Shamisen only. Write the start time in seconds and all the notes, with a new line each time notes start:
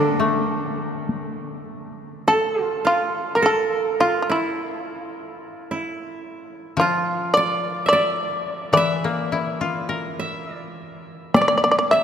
Already playing: D4
2.28 A4
2.64 F4
2.87 F4
3.35 A#4
3.46 A4
4.01 F4
4.22 F4
4.32 E4
6.80 F4
7.34 D5
7.70 A#4
7.89 D5
8.74 D5
9.10 D#5
9.32 E5
11.34 D5
11.42 D5
11.48 D5
11.58 D5
11.64 D5
11.71 D5
11.79 D5
11.91 E5